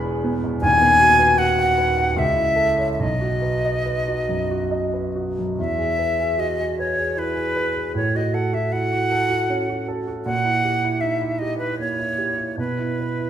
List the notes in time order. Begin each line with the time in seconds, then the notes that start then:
Already playing: E1 E2 B3 G#4 B4 G#5 B5
0.04 G#4
0.24 B3
0.44 B2
0.61 D#1 D#2 G#5
0.82 B3
1.00 F#4
1.19 B4
1.37 F#4 F#5
1.59 F#5
1.78 B4
1.97 F#5
2.16 C#2 E5
2.36 E4
2.56 A4
2.79 C#5
2.93 E5
2.99 B1 D#5
3.21 F#4
3.42 B4
3.65 D#5
3.86 B4
4.08 F#4
4.29 F#2
4.51 F#4
4.71 D#5
4.94 B4
5.16 F#4
5.39 F#2
5.58 E2 E5
5.78 G#4
5.99 B4
6.20 G#4
6.38 F#4 D#5
6.59 G#4
6.79 B4 C#5
6.98 G#4
7.17 E4 B4
7.35 G#4
7.56 B4
7.75 G#4
7.95 A2 C#5
8.15 F#4 D#5
8.34 A4 F#5
8.53 F#4 E5
8.72 E4 F#5
8.93 F#4
9.12 A4
9.30 F#4
9.50 C#4
9.70 F#4
9.88 A4
10.07 F#4
10.25 A#2 F#5
10.45 E4
10.64 G4
10.84 E4
11.01 D#4 E5
11.22 E4
11.39 G4 D#5
11.59 E4 B4
11.79 A#3 C#5
11.99 E4
12.18 G4
12.38 E4
12.58 B2 B4
12.79 E4
13.00 B4
13.19 E4